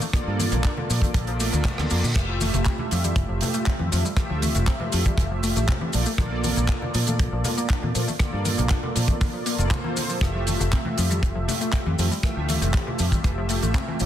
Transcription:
0.01 A3, muted conga, shaker
0.13 D3 A#3 F4 A4 D5, muted fingered electric bass stroke, kick, cross-stick, closed hi-hat, shaker
0.27 G2 F3
0.39 A#3, open hi-hat, high conga, shaker
0.51 A#1 A#3, closed hi-hat, low conga, shaker
0.64 D4, kick, clap, closed hi-hat, shaker
0.77 D3, low conga
0.90 A#2 F3, open hi-hat, shaker
1.02 A3, kick, closed hi-hat, high conga, shaker
1.14 A#1 D3, kick, closed hi-hat, reverse cymbal, shaker
1.27 F3, closed hi-hat
1.40 A3, open hi-hat, shaker
1.52 D2 A#3, closed hi-hat, muted conga, shaker
1.65 A3, kick, clap, closed hi-hat, low conga, shaker
1.78 D2 D3, cross-stick, high conga
1.90 F2 A#3 F4 A4 D5, open hi-hat, muted conga, shaker
2.03 A#2 D3, shaker
2.15 F1 E3 A3 F4 G4 E5, kick, cross-stick, closed hi-hat, crash, shaker
2.29 F3
2.41 A3, open hi-hat, muted conga, high conga, shaker
2.53 F1 A3, closed hi-hat, low conga, shaker
2.65 C4, kick, clap, closed hi-hat, shaker
2.78 E3, low conga
2.91 F2 F3, open hi-hat, shaker
3.04 G3, closed hi-hat, high conga, shaker
3.16 F1 E3, kick, closed hi-hat, shaker
3.29 F1 F3
3.41 A3, open hi-hat, low conga, shaker
3.54 A3, closed hi-hat, shaker
3.66 C4, kick, clap, closed hi-hat, shaker
3.79 F2 E3, high conga
3.92 F2 F3 A3 F4 G4 E5, open hi-hat, shaker
4.05 G3, muted conga, shaker
4.16 E3 A3 F4 G4 E5, kick, cross-stick, closed hi-hat, shaker
4.30 D2 F3
4.42 A3, open hi-hat, high conga, shaker
4.55 F1 A3, closed hi-hat, low conga, shaker
4.67 C4, kick, clap, closed hi-hat, shaker
4.80 E3, low conga
4.92 F2 F3, open hi-hat, shaker
5.06 G3, kick, high conga, shaker
5.18 F1 E3, kick, closed hi-hat, shaker
5.31 F3
5.43 A3, open hi-hat, shaker
5.56 A1 A3, closed hi-hat, muted conga, shaker
5.68 C4, kick, clap, closed hi-hat, low conga, shaker
5.81 E3, high conga
5.93 A#1 F3 A#3 F4 A4 D5, open hi-hat, muted conga, shaker
6.06 A3, shaker
6.18 A#1 D3 A#3 F4 A4 D5, kick, cross-stick, closed hi-hat, shaker
6.31 F3
6.44 A#3, open hi-hat, muted conga, high conga, shaker
6.56 A#1 A#3, closed hi-hat, low conga, shaker
6.68 D4, kick, clap, closed hi-hat, shaker
6.82 D3, low conga
6.94 A#2 F3, open hi-hat, shaker
7.07 A3, closed hi-hat, high conga, shaker
7.19 A#1 D3, kick, closed hi-hat, shaker
7.32 A#1 F3
7.44 A#3, open hi-hat, low conga, shaker
7.57 A#3, closed hi-hat, shaker
7.69 D4, kick, clap, closed hi-hat, shaker
7.83 A#2 D3, high conga
7.95 A#2 F3 A#3 F4 A4 D5, open hi-hat, shaker
8.08 A3, muted conga, shaker
8.19 D3 A#3 F4 A4 D5, kick, cross-stick, closed hi-hat, shaker
8.33 G2 F3
8.45 A#3, open hi-hat, muted conga, high conga, shaker
8.58 A#1 A#3, closed hi-hat, low conga, shaker
8.69 D4, kick, clap, closed hi-hat, shaker
8.83 D3, low conga
8.95 A#2 F3, open hi-hat, shaker
9.08 A3, kick, closed hi-hat, high conga, shaker
9.21 D3, kick, open hi-hat, shaker
9.33 F3
9.46 A#3, open hi-hat, shaker
9.58 F1 A#3 F4 A4 D5, closed hi-hat, muted conga, shaker
9.71 D3 A#3 F4 A4 C5, kick, clap, closed hi-hat, low conga, shaker
9.84 A#3, high conga
9.97 D3, open hi-hat, muted conga, shaker
10.09 F3, shaker
10.21 F1 E3 A3 F4 G4 E5, kick, cross-stick, closed hi-hat, shaker
10.35 F3
10.47 A3, open hi-hat, muted conga, high conga, shaker
10.60 F1 A3, closed hi-hat, low conga, shaker
10.72 C4, kick, clap, closed hi-hat, shaker
10.85 E3, low conga
10.98 F2 F3, open hi-hat, shaker
11.10 G3, closed hi-hat, high conga, shaker
11.23 F1 E3, kick, closed hi-hat, shaker
11.35 F1 F3
11.48 A3, open hi-hat, low conga, shaker
11.61 A3, closed hi-hat, shaker
11.73 C4, kick, clap, closed hi-hat, shaker
11.86 F2 E3, high conga
11.98 F2 F3 A3 F4 G4 E5, open hi-hat, shaker
12.11 G3, muted conga, shaker
12.23 E3 A3 F4 G4 E5, muted fingered electric bass stroke, kick, cross-stick, closed hi-hat, shaker
12.37 D2 F3
12.49 A3, open hi-hat, high conga, shaker
12.61 F1 A3, closed hi-hat, low conga, shaker
12.74 C4, kick, clap, closed hi-hat, shaker
12.87 E3, low conga
12.99 F2 F3, open hi-hat, shaker
13.12 G3, kick, closed hi-hat, high conga, shaker
13.24 F1 E3, kick, closed hi-hat, shaker
13.38 F3
13.49 A3, open hi-hat, shaker
13.62 A1 A3, closed hi-hat, muted conga, shaker
13.74 C4, kick, clap, closed hi-hat, low conga, shaker
13.88 E3, high conga
14.00 A#1 F3 A#3 F4 A4 D5, open hi-hat, muted conga, shaker

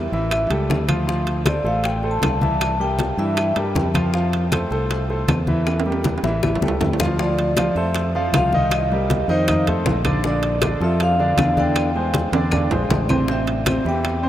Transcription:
0.12 A1 E3 E4 E5, high bongo, high conga
0.31 E3 E4 E5, high bongo, high conga, high timbale, claves
0.50 C#2 G3 G4 A4, high bongo, high conga, high timbale
0.69 D2, high bongo, low bongo, high conga, low timbale
0.88 F3 F4 F5, high bongo, high conga, high timbale, claves
1.07 F3 F4 F5, high bongo, high conga
1.27 high bongo, high conga, high timbale
1.45 A3 A4 C5 D5, high bongo, high conga, high timbale, low timbale, claves
1.64 A1 A3 A4 C5 F5, high bongo, high conga
1.84 G5, high bongo, high conga, high timbale
2.03 A3 A4 C5, high conga
2.11 A5
2.22 C2, high bongo, low bongo, high conga, high timbale, low timbale, claves
2.41 E3 E4 E5 A5, high bongo, high conga
2.61 high bongo, high conga, high timbale, claves
2.80 G3 G4 A#4 G5, high conga
2.99 high bongo, high conga, high timbale, low timbale
3.17 G2 E3 E4 E5, high bongo, high conga
3.37 E3 E4 E5, high bongo, high conga, high timbale, claves
3.56 G2 G3 G4 A#4, high bongo, high conga, high timbale
3.75 F2, high bongo, low bongo, high conga, low timbale
3.94 F3 F4 F5, high bongo, high conga, high timbale, claves
4.13 F3 F4 F5, high bongo
4.33 high bongo, high conga, high timbale
4.52 A3 A4 C5, high bongo, high conga, high timbale, low timbale, claves
4.71 C2 A3 A4 C5, high bongo, high conga
4.90 high bongo, high conga, high timbale
5.10 A3 A4 C5, high conga
5.28 E2, high bongo, low bongo, high conga, high timbale, low timbale, claves
5.47 E3 E4 E5, high bongo, high conga
5.67 high bongo, high conga, high timbale, claves
5.80 high timbale
5.86 G3 G4 A#4, high conga
5.92 high timbale
6.04 high bongo, high conga, low timbale
6.18 high timbale
6.23 A1 E3 E4 E5, high bongo, high conga
6.43 E3 E4 E5, high bongo, high conga, claves
6.55 low timbale
6.61 C#2 G3 G4 A4, high bongo, high conga
6.68 low timbale
6.80 D2, low bongo, low conga, low timbale
6.93 low timbale
7.00 F3 F4 F5, low bongo, low conga, claves
7.05 low timbale
7.19 F3 F4 D5 F5, high bongo, high conga
7.38 high bongo, high conga, high timbale
7.57 F3 F4 F5, high bongo, high conga, high timbale, low timbale, claves
7.75 F2 A3 A4 C5 E5, high bongo, high conga
7.95 high bongo, high conga, high timbale
8.15 F3 F4 F5, high conga
8.33 C2 F3 F4 F5, high bongo, low bongo, high conga, high timbale, low timbale, claves
8.53 D#3 D#4 D#5, high bongo, high conga
8.71 D#5, high bongo, high conga, high timbale, claves
8.92 G3 G4 A#4, high conga
9.10 high bongo, high conga, high timbale, low timbale
9.28 F2 D#3 D#4 C5 D#5, high bongo, high conga
9.48 D#3 D#4 D#5, high bongo, high conga, low conga, high timbale, claves
9.67 A3 A4 C5, high bongo, high conga, low conga, high timbale
9.85 A#1, high bongo, low bongo, high conga, low timbale
10.05 D3 D4 D5, high bongo, high conga, high timbale, claves
10.24 D3 D4 D5, high bongo, high conga
10.43 high bongo, high conga, high timbale
10.62 D3 D4 D5, high bongo, high conga, high timbale, low timbale, claves
10.80 F2 F3 F4 A4 E5, high bongo, high conga
11.00 F5, high bongo, high conga, high timbale
11.20 D3 D4 D5, high conga
11.37 E2 D3 D4 D5, high bongo, low bongo, high conga, high timbale, low timbale, claves
11.57 D3 D4 D5 G5, high bongo, high conga
11.76 high bongo, high conga, high timbale, claves
11.95 G#3 G#4 C5, high conga
12.14 high bongo, high conga, high timbale, low timbale
12.32 E2 D3 D4 D5, high bongo, high conga, high timbale
12.51 D3 D4 D5, high bongo, high conga, low conga, high timbale, claves
12.71 A#1 G#3 G#4 C5, high bongo, high conga, low conga, low timbale
12.89 A1, high bongo, low bongo, high conga, low timbale
13.09 C3 C4 C5, high bongo, high conga, low timbale, claves
13.28 C3 C4 C5 E5, high bongo
13.47 high bongo, high conga, high timbale
13.66 C3 C4 C5, high bongo, high conga, high timbale, low timbale, claves
13.85 E2 E3 E4 G4 G5, high bongo, high conga
14.05 high bongo, high conga, high timbale
14.23 C3 C4 C5, high conga

